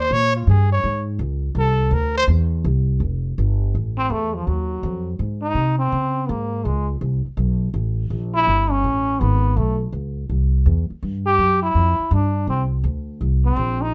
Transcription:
0.00 0.15 C5 medium
0.11 0.46 A#2 loud
0.11 0.36 C#5 loud
0.36 0.51 F4 medium
0.47 0.82 G2 medium
0.47 0.72 G#4 medium
0.73 1.06 C#5 medium
0.84 1.18 G#2 medium
1.19 1.54 C#2 medium
1.55 1.90 C2 medium
1.59 1.95 A4 medium
1.91 2.27 D2 loud
1.91 2.17 A#4 medium
2.18 2.25 C5 loud
2.28 2.63 E2 medium
2.64 2.99 C2 loud
3.00 3.36 F1 medium
3.38 3.73 G1 medium
3.75 4.09 A1 medium
3.98 4.13 C4 medium
4.10 4.45 E2 medium
4.10 4.36 A3 medium
4.35 4.48 F3 medium
4.47 4.82 D#2 medium
4.47 5.19 F#3 medium
4.83 5.18 F2 medium
5.19 5.54 G#2 medium
5.42 5.76 D#4 loud
5.55 5.91 C3 medium
5.79 6.30 C4 medium
5.92 6.28 C#3 medium
6.29 6.64 G#2 loud
6.29 6.66 A#3 medium
6.65 7.01 C#2 medium
6.65 6.89 G#3 medium
7.01 7.24 C2 medium
7.26 muted upright bass stroke soft
7.37 7.73 B1 medium
7.74 8.10 A1 medium
8.10 8.46 A#1 medium
8.35 8.73 E4 loud
8.47 8.83 G1 medium
8.71 9.21 C#4 loud
8.84 9.19 A1 medium
9.20 9.56 G#1 medium
9.20 9.58 B3 medium
9.57 9.92 B1 medium
9.57 9.81 A3 medium
9.92 10.28 C#2 medium
10.29 10.65 C2 medium
10.66 10.88 E2 medium
10.90 muted upright bass stroke soft
11.03 11.38 G2 medium
11.26 11.61 G4 loud
11.38 11.74 F#2 medium
11.63 12.15 E4 loud
11.75 11.98 F2 medium
11.99 muted upright bass stroke soft
12.11 12.47 G2 loud
12.11 12.49 D4 medium
12.47 12.83 C2 medium
12.47 12.64 C4 medium
12.84 13.20 D2 medium
13.21 13.56 C2 medium
13.45 13.83 C4 loud
13.56 13.93 A#1 medium
13.82 13.94 D#4 loud

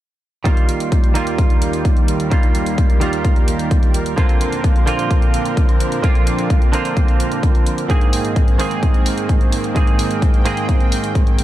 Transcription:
0.44 4.14 D#2 medium
0.44 1.12 D#3 medium
0.44 4.14 D#3 medium
0.44 1.12 G3 medium
0.44 4.14 G3 medium
0.44 1.13 A#3 medium
0.44 2.30 F4 medium
0.44 1.13 F4 medium
0.44 7.86 A#4 medium
0.44 kick loud
0.44 closed hi-hat medium
0.57 closed hi-hat soft
0.69 closed hi-hat medium
0.80 closed hi-hat medium
0.92 kick loud
0.92 closed hi-hat medium
1.04 closed hi-hat soft
1.14 2.28 D#3 medium
1.14 2.29 G3 medium
1.14 2.29 A#3 medium
1.14 2.29 F4 loud
1.14 closed hi-hat medium
1.27 closed hi-hat medium
1.38 kick loud
1.38 closed hi-hat soft
1.50 closed hi-hat soft
1.62 closed hi-hat medium
1.73 closed hi-hat medium
1.85 kick loud
1.85 closed hi-hat soft
1.97 closed hi-hat soft
2.08 closed hi-hat medium
2.20 closed hi-hat medium
2.30 2.98 D#3 medium
2.30 2.98 G3 medium
2.30 2.99 A#3 medium
2.30 2.99 F4 medium
2.30 4.16 G4 medium
2.30 kick loud
2.30 closed hi-hat medium
2.43 closed hi-hat soft
2.55 closed hi-hat medium
2.66 closed hi-hat medium
2.78 kick loud
2.78 closed hi-hat soft
2.90 closed hi-hat soft
3.00 4.14 D#3 medium
3.00 4.15 G3 medium
3.00 4.15 A#3 medium
3.00 4.15 F4 loud
3.00 closed hi-hat medium
3.13 closed hi-hat soft
3.25 kick loud
3.25 closed hi-hat soft
3.36 closed hi-hat soft
3.48 closed hi-hat medium
3.59 closed hi-hat medium
3.71 kick loud
3.71 closed hi-hat soft
3.83 closed hi-hat soft
3.94 closed hi-hat medium
4.06 closed hi-hat medium
4.16 7.86 A#2 medium
4.16 4.84 D3 medium
4.16 7.86 F3 medium
4.16 4.84 A#3 medium
4.16 7.86 C4 medium
4.16 4.85 C4 medium
4.16 7.86 D4 medium
4.16 4.85 F4 medium
4.16 kick loud
4.16 closed hi-hat soft
4.29 closed hi-hat soft
4.41 closed hi-hat medium
4.52 closed hi-hat medium
4.64 kick loud
4.64 closed hi-hat soft
4.76 closed hi-hat soft
4.86 6.00 D3 medium
4.86 6.01 A#3 medium
4.86 6.01 C4 medium
4.86 6.01 F4 loud
4.86 closed hi-hat medium
4.99 closed hi-hat soft
5.11 kick loud
5.11 closed hi-hat soft
5.22 closed hi-hat soft
5.34 closed hi-hat medium
5.45 closed hi-hat soft
5.57 kick loud
5.57 closed hi-hat soft
5.69 closed hi-hat soft
5.80 closed hi-hat medium
5.92 closed hi-hat soft
6.02 6.70 D3 medium
6.02 6.70 A#3 medium
6.02 6.71 C4 medium
6.02 6.71 F4 medium
6.02 kick loud
6.02 closed hi-hat soft
6.15 closed hi-hat soft
6.27 closed hi-hat medium
6.39 closed hi-hat soft
6.50 kick loud
6.50 closed hi-hat soft
6.62 closed hi-hat soft
6.72 7.86 D3 medium
6.72 7.87 A#3 medium
6.72 7.87 C4 medium
6.72 7.87 F4 loud
6.72 closed hi-hat medium
6.85 closed hi-hat soft
6.97 kick loud
6.97 closed hi-hat soft
7.08 closed hi-hat soft
7.20 closed hi-hat medium
7.32 closed hi-hat soft
7.43 kick loud
7.43 closed hi-hat soft
7.55 closed hi-hat soft
7.66 closed hi-hat medium
7.78 closed hi-hat soft
7.88 8.56 G#2 medium
7.88 11.44 G#2 medium
7.88 8.56 D#3 medium
7.88 11.44 D#3 medium
7.88 8.57 A#3 medium
7.88 11.44 A#3 medium
7.88 11.44 C4 medium
7.88 8.57 C4 medium
7.88 9.74 G#4 medium
7.88 8.57 G#4 medium
7.88 kick loud
7.88 closed hi-hat soft
8.01 closed hi-hat soft
8.13 open hi-hat loud
8.25 closed hi-hat soft
8.36 kick loud
8.36 closed hi-hat soft
8.48 closed hi-hat soft
8.58 9.72 G#2 medium
8.58 9.73 D#3 medium
8.58 9.73 A#3 medium
8.58 9.73 C4 medium
8.58 9.74 G#4 loud
8.58 open hi-hat loud
8.71 closed hi-hat soft
8.83 kick loud
8.83 closed hi-hat soft
8.94 closed hi-hat soft
9.06 open hi-hat loud
9.18 closed hi-hat soft
9.29 kick loud
9.29 closed hi-hat soft
9.41 closed hi-hat soft
9.52 open hi-hat loud
9.64 closed hi-hat soft
9.75 10.42 G#2 medium
9.75 10.42 D#3 medium
9.75 10.43 A#3 medium
9.75 10.43 C4 medium
9.75 10.43 G#4 medium
9.75 11.44 G5 medium
9.75 kick loud
9.75 closed hi-hat medium
9.87 closed hi-hat soft
9.99 open hi-hat loud
10.11 closed hi-hat soft
10.22 kick loud
10.22 closed hi-hat soft
10.34 closed hi-hat soft
10.44 11.44 G#2 medium
10.44 11.44 D#3 medium
10.44 11.44 A#3 medium
10.44 11.44 C4 medium
10.44 11.44 G#4 loud
10.44 open hi-hat loud
10.57 closed hi-hat soft
10.69 kick loud
10.69 closed hi-hat soft
10.80 closed hi-hat soft
10.92 open hi-hat loud
11.04 closed hi-hat medium
11.15 kick loud
11.15 closed hi-hat soft
11.27 closed hi-hat soft
11.38 open hi-hat loud

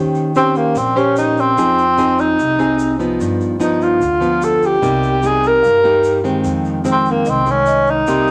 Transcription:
0.00 0.73 D#2 medium
0.00 0.74 D#3 medium
0.00 0.32 C#4 medium
0.00 0.33 G4 medium
0.00 0.33 C5 medium
0.15 shaker soft
0.35 0.58 C4 medium
0.35 0.76 C#4 medium
0.35 0.76 G4 medium
0.35 0.76 C5 medium
0.35 shaker medium
0.55 0.79 A#3 medium
0.55 shaker soft
0.75 1.53 A#1 medium
0.75 1.56 A#2 medium
0.75 0.99 C4 medium
0.75 1.74 G5 soft
0.75 shaker medium
0.96 1.54 C#4 medium
0.96 1.17 C#4 medium
0.96 1.54 G4 medium
0.96 1.54 C5 medium
0.96 shaker soft
1.16 1.41 D#4 medium
1.16 shaker medium
1.37 2.21 C4 loud
1.37 shaker soft
1.57 2.35 F2 medium
1.57 2.37 F3 medium
1.57 1.84 C4 medium
1.57 1.84 D#4 medium
1.57 1.84 G#4 medium
1.57 shaker medium
1.78 shaker soft
1.98 2.38 C4 soft
1.98 2.39 D#4 medium
1.98 2.39 G#4 medium
1.98 shaker medium
2.18 3.01 D#4 medium
2.18 shaker soft
2.39 3.16 C2 medium
2.39 3.18 C3 soft
2.39 shaker medium
2.59 2.96 C4 medium
2.59 2.97 D#4 medium
2.59 2.97 G#4 medium
2.59 shaker soft
2.79 shaker medium
2.99 3.57 F3 medium
2.99 3.57 B3 soft
2.99 3.58 D#4 medium
2.99 shaker soft
3.20 3.99 G2 medium
3.20 3.98 G2 medium
3.20 shaker medium
3.41 shaker soft
3.60 4.01 F3 soft
3.60 4.01 B3 medium
3.60 4.01 D#4 medium
3.60 3.85 D#4 medium
3.60 shaker medium
3.81 4.46 F4 medium
3.81 shaker soft
4.00 4.79 D2 medium
4.00 4.80 D3 medium
4.00 shaker medium
4.20 4.79 F3 medium
4.20 4.79 B3 medium
4.20 shaker soft
4.42 4.67 A4 medium
4.42 shaker medium
4.62 5.28 G4 medium
4.62 shaker soft
4.82 5.60 C2 medium
4.82 5.62 C3 soft
4.82 5.20 G3 medium
4.82 5.20 A#3 medium
4.82 5.20 D#4 medium
4.82 shaker medium
5.03 shaker soft
5.22 5.81 G3 soft
5.22 5.81 A#3 medium
5.22 5.81 D#4 medium
5.22 5.48 G#4 medium
5.22 shaker medium
5.43 6.26 A#4 medium
5.43 shaker soft
5.62 6.41 G2 medium
5.62 6.43 G2 soft
5.62 6.61 F5 soft
5.62 shaker medium
5.84 6.21 G3 medium
5.84 6.21 A#3 medium
5.84 6.22 D#4 medium
5.84 shaker soft
6.04 shaker medium
6.24 6.82 D#3 medium
6.24 6.82 G#3 medium
6.24 6.82 C4 medium
6.24 shaker soft
6.44 7.24 F2 medium
6.44 7.22 F2 medium
6.44 shaker medium
6.64 shaker soft
6.84 7.43 D#3 medium
6.84 7.43 G#3 medium
6.84 7.43 C4 medium
6.84 shaker medium
6.92 7.12 C4 medium
7.06 shaker soft
7.11 7.31 A#3 medium
7.25 8.04 C2 medium
7.25 7.52 C4 medium
7.25 7.65 D#5 soft
7.25 shaker medium
7.46 8.04 D#3 medium
7.46 8.04 G#3 medium
7.46 shaker soft
7.50 7.92 C#4 medium
7.66 8.24 D#5 soft
7.66 shaker medium
7.87 8.31 D#4 medium
7.87 shaker soft
8.07 8.31 C2 medium
8.07 8.31 C3 medium
8.07 8.31 G3 medium
8.07 8.31 A#3 medium
8.07 8.31 D#4 medium
8.07 8.31 C6 soft
8.07 shaker medium
8.22 8.31 D#6 soft
8.28 shaker soft

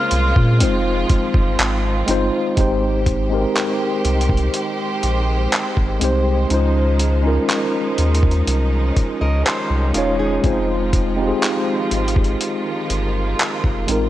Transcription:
0.00 0.58 C#3 medium
0.00 0.49 G#3 medium
0.00 2.53 G#3 medium
0.00 0.58 A#3 medium
0.00 0.49 C4 medium
0.00 0.50 C#4 medium
0.00 0.51 F4 medium
0.00 2.53 F4 medium
0.00 0.51 A#4 medium
0.00 0.57 C5 medium
0.00 2.05 F6 medium
0.11 0.34 C2 loud
0.11 closed hi-hat medium
0.36 0.63 A#2 loud
0.36 kick loud
0.58 1.05 F1 loud
0.58 2.55 D#3 medium
0.58 2.55 F3 medium
0.58 1.99 G#3 medium
0.58 2.00 C4 medium
0.58 2.55 C4 medium
0.58 2.00 D#4 medium
0.58 2.01 F4 medium
0.58 closed hi-hat medium
0.63 2.01 C5 medium
1.10 1.20 G1 soft
1.10 kick medium
1.10 closed hi-hat medium
1.34 1.56 G1 medium
1.34 kick loud
1.59 2.03 G#1 medium
1.59 clap loud
1.59 closed hi-hat medium
2.06 2.30 G1 medium
2.06 2.54 G#3 medium
2.06 2.54 C4 medium
2.06 2.55 D#4 medium
2.06 2.55 F4 medium
2.06 closed hi-hat medium
2.11 2.56 C5 loud
2.55 3.46 G#1 loud
2.55 6.47 D#3 medium
2.55 3.26 G#3 medium
2.55 14.09 G#3 medium
2.55 3.27 C4 medium
2.55 3.27 D#4 medium
2.55 6.47 G4 medium
2.55 3.28 G4 medium
2.55 8.44 C5 medium
2.55 kick medium
2.55 closed hi-hat medium
2.60 3.28 C5 medium
3.06 kick medium
3.06 closed hi-hat medium
3.29 5.16 G#3 medium
3.29 5.17 C4 medium
3.29 5.17 D#4 medium
3.29 5.18 G4 medium
3.34 5.18 A#4 medium
3.56 clap loud
3.56 closed hi-hat medium
4.05 4.49 C2 loud
4.05 closed hi-hat medium
4.21 closed hi-hat medium
4.29 kick medium
4.37 closed hi-hat soft
4.54 closed hi-hat medium
5.03 5.47 A#1 loud
5.03 closed hi-hat medium
5.52 clap loud
5.52 closed hi-hat medium
5.77 5.99 G#1 medium
5.77 kick medium
6.00 6.46 C2 medium
6.00 6.47 G#3 medium
6.00 6.48 C4 medium
6.00 6.48 D#4 medium
6.00 6.49 G4 medium
6.00 closed hi-hat medium
6.04 6.49 C5 loud
6.49 7.39 C#2 loud
6.49 10.40 D#3 medium
6.49 14.09 F3 medium
6.49 7.20 G#3 medium
6.49 7.20 C#4 medium
6.49 10.40 D#4 medium
6.49 7.21 D#4 medium
6.49 7.21 F4 medium
6.49 closed hi-hat medium
6.54 7.22 C5 medium
7.00 closed hi-hat medium
7.23 9.09 G#3 medium
7.23 9.10 C#4 medium
7.23 9.11 D#4 medium
7.23 9.11 F4 medium
7.28 9.12 A#4 loud
7.49 clap loud
7.49 closed hi-hat medium
7.98 8.42 D#2 medium
7.98 closed hi-hat medium
8.14 closed hi-hat medium
8.23 kick medium
8.31 closed hi-hat soft
8.47 8.91 C2 medium
8.47 10.42 C#4 medium
8.47 closed hi-hat medium
8.96 kick medium
8.96 closed hi-hat medium
9.21 9.43 C#2 medium
9.21 9.45 A#4 medium
9.21 9.44 D#5 medium
9.46 9.93 G4 medium
9.46 9.92 C5 medium
9.46 clap loud
9.46 closed hi-hat medium
9.70 9.92 C2 medium
9.93 10.39 E1 medium
9.93 10.41 G#3 medium
9.93 10.41 C#4 medium
9.93 10.42 D#4 medium
9.93 10.18 F4 medium
9.93 10.42 F4 medium
9.93 10.18 A#4 medium
9.93 closed hi-hat medium
9.98 10.43 C#5 loud
10.19 10.66 D#4 medium
10.19 10.66 G#4 medium
10.42 11.32 F1 loud
10.42 14.09 D#3 medium
10.42 11.13 G#3 medium
10.42 11.13 C4 medium
10.42 12.39 C4 medium
10.42 11.14 D#4 medium
10.42 14.09 F4 medium
10.42 11.14 F4 medium
10.42 kick medium
10.42 closed hi-hat medium
10.46 11.15 C5 medium
10.93 kick medium
10.93 closed hi-hat medium
11.16 13.03 G#3 medium
11.16 13.03 C4 medium
11.16 13.04 D#4 medium
11.16 13.05 F4 medium
11.21 11.26 G4 medium
11.28 13.08 G#4 medium
11.42 clap loud
11.42 closed hi-hat medium
11.92 12.36 G#1 medium
11.92 closed hi-hat medium
12.08 closed hi-hat medium
12.16 kick medium
12.24 closed hi-hat soft
12.40 14.09 A#3 medium
12.40 closed hi-hat medium
12.90 13.34 G1 medium
12.90 closed hi-hat medium
13.39 clap loud
13.39 closed hi-hat medium
13.64 13.86 F1 medium
13.64 kick medium
13.87 14.09 A1 medium
13.87 14.09 G#3 medium
13.87 14.09 C4 medium
13.87 14.09 D#4 medium
13.87 14.09 F4 medium
13.87 closed hi-hat medium
13.91 14.09 A#4 medium

